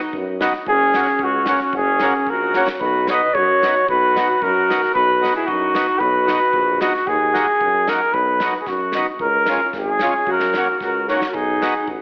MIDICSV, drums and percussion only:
0, 0, Header, 1, 2, 480
1, 0, Start_track
1, 0, Key_signature, 5, "major"
1, 0, Tempo, 533808
1, 605, Time_signature, 2, 2, 24, 8
1, 6367, Key_signature, -6, "minor"
1, 10806, End_track
2, 0, Start_track
2, 0, Title_t, "Drums"
2, 117, Note_on_c, 9, 36, 57
2, 207, Note_off_c, 9, 36, 0
2, 366, Note_on_c, 9, 38, 66
2, 366, Note_on_c, 9, 44, 37
2, 456, Note_off_c, 9, 38, 0
2, 456, Note_off_c, 9, 44, 0
2, 483, Note_on_c, 9, 38, 22
2, 573, Note_off_c, 9, 38, 0
2, 598, Note_on_c, 9, 36, 68
2, 687, Note_off_c, 9, 36, 0
2, 843, Note_on_c, 9, 38, 80
2, 843, Note_on_c, 9, 44, 41
2, 933, Note_off_c, 9, 38, 0
2, 933, Note_off_c, 9, 44, 0
2, 953, Note_on_c, 9, 38, 29
2, 1043, Note_off_c, 9, 38, 0
2, 1071, Note_on_c, 9, 36, 70
2, 1161, Note_off_c, 9, 36, 0
2, 1310, Note_on_c, 9, 38, 77
2, 1310, Note_on_c, 9, 44, 32
2, 1399, Note_off_c, 9, 38, 0
2, 1399, Note_off_c, 9, 44, 0
2, 1433, Note_on_c, 9, 38, 27
2, 1523, Note_off_c, 9, 38, 0
2, 1555, Note_on_c, 9, 36, 72
2, 1645, Note_off_c, 9, 36, 0
2, 1793, Note_on_c, 9, 38, 68
2, 1793, Note_on_c, 9, 44, 46
2, 1883, Note_off_c, 9, 38, 0
2, 1883, Note_off_c, 9, 44, 0
2, 2037, Note_on_c, 9, 36, 58
2, 2127, Note_off_c, 9, 36, 0
2, 2282, Note_on_c, 9, 38, 45
2, 2282, Note_on_c, 9, 44, 32
2, 2372, Note_off_c, 9, 38, 0
2, 2372, Note_off_c, 9, 44, 0
2, 2401, Note_on_c, 9, 38, 68
2, 2491, Note_off_c, 9, 38, 0
2, 2524, Note_on_c, 9, 36, 64
2, 2614, Note_off_c, 9, 36, 0
2, 2763, Note_on_c, 9, 38, 72
2, 2763, Note_on_c, 9, 44, 45
2, 2853, Note_off_c, 9, 38, 0
2, 2853, Note_off_c, 9, 44, 0
2, 3010, Note_on_c, 9, 36, 71
2, 3100, Note_off_c, 9, 36, 0
2, 3260, Note_on_c, 9, 38, 60
2, 3260, Note_on_c, 9, 44, 32
2, 3350, Note_off_c, 9, 38, 0
2, 3350, Note_off_c, 9, 44, 0
2, 3493, Note_on_c, 9, 36, 64
2, 3583, Note_off_c, 9, 36, 0
2, 3743, Note_on_c, 9, 38, 66
2, 3743, Note_on_c, 9, 44, 46
2, 3833, Note_off_c, 9, 38, 0
2, 3833, Note_off_c, 9, 44, 0
2, 3973, Note_on_c, 9, 36, 60
2, 4063, Note_off_c, 9, 36, 0
2, 4229, Note_on_c, 9, 38, 68
2, 4229, Note_on_c, 9, 44, 39
2, 4319, Note_off_c, 9, 38, 0
2, 4319, Note_off_c, 9, 44, 0
2, 4351, Note_on_c, 9, 38, 26
2, 4441, Note_off_c, 9, 38, 0
2, 4453, Note_on_c, 9, 36, 67
2, 4543, Note_off_c, 9, 36, 0
2, 4710, Note_on_c, 9, 38, 73
2, 4710, Note_on_c, 9, 44, 36
2, 4800, Note_off_c, 9, 38, 0
2, 4800, Note_off_c, 9, 44, 0
2, 4927, Note_on_c, 9, 36, 70
2, 5016, Note_off_c, 9, 36, 0
2, 5168, Note_on_c, 9, 38, 82
2, 5168, Note_on_c, 9, 44, 37
2, 5258, Note_off_c, 9, 38, 0
2, 5258, Note_off_c, 9, 44, 0
2, 5398, Note_on_c, 9, 36, 57
2, 5488, Note_off_c, 9, 36, 0
2, 5646, Note_on_c, 9, 38, 64
2, 5646, Note_on_c, 9, 44, 41
2, 5736, Note_off_c, 9, 38, 0
2, 5736, Note_off_c, 9, 44, 0
2, 5874, Note_on_c, 9, 36, 62
2, 5964, Note_off_c, 9, 36, 0
2, 6121, Note_on_c, 9, 38, 70
2, 6121, Note_on_c, 9, 44, 38
2, 6211, Note_off_c, 9, 38, 0
2, 6211, Note_off_c, 9, 44, 0
2, 6243, Note_on_c, 9, 38, 26
2, 6333, Note_off_c, 9, 38, 0
2, 6357, Note_on_c, 9, 36, 69
2, 6447, Note_off_c, 9, 36, 0
2, 6607, Note_on_c, 9, 38, 58
2, 6697, Note_off_c, 9, 38, 0
2, 6840, Note_on_c, 9, 36, 59
2, 6930, Note_off_c, 9, 36, 0
2, 7081, Note_on_c, 9, 38, 68
2, 7171, Note_off_c, 9, 38, 0
2, 7317, Note_on_c, 9, 36, 60
2, 7407, Note_off_c, 9, 36, 0
2, 7553, Note_on_c, 9, 38, 76
2, 7643, Note_off_c, 9, 38, 0
2, 7788, Note_on_c, 9, 38, 25
2, 7790, Note_on_c, 9, 36, 64
2, 7878, Note_off_c, 9, 38, 0
2, 7880, Note_off_c, 9, 36, 0
2, 8022, Note_on_c, 9, 38, 53
2, 8112, Note_off_c, 9, 38, 0
2, 8267, Note_on_c, 9, 36, 72
2, 8357, Note_off_c, 9, 36, 0
2, 8507, Note_on_c, 9, 38, 74
2, 8597, Note_off_c, 9, 38, 0
2, 8750, Note_on_c, 9, 38, 23
2, 8751, Note_on_c, 9, 36, 54
2, 8840, Note_off_c, 9, 38, 0
2, 8841, Note_off_c, 9, 36, 0
2, 8986, Note_on_c, 9, 38, 61
2, 9076, Note_off_c, 9, 38, 0
2, 9232, Note_on_c, 9, 36, 68
2, 9322, Note_off_c, 9, 36, 0
2, 9351, Note_on_c, 9, 38, 55
2, 9441, Note_off_c, 9, 38, 0
2, 9474, Note_on_c, 9, 38, 77
2, 9564, Note_off_c, 9, 38, 0
2, 9715, Note_on_c, 9, 36, 62
2, 9720, Note_on_c, 9, 38, 21
2, 9805, Note_off_c, 9, 36, 0
2, 9810, Note_off_c, 9, 38, 0
2, 9967, Note_on_c, 9, 38, 31
2, 10056, Note_off_c, 9, 38, 0
2, 10083, Note_on_c, 9, 38, 65
2, 10173, Note_off_c, 9, 38, 0
2, 10199, Note_on_c, 9, 36, 59
2, 10289, Note_off_c, 9, 36, 0
2, 10448, Note_on_c, 9, 38, 60
2, 10537, Note_off_c, 9, 38, 0
2, 10678, Note_on_c, 9, 36, 60
2, 10768, Note_off_c, 9, 36, 0
2, 10806, End_track
0, 0, End_of_file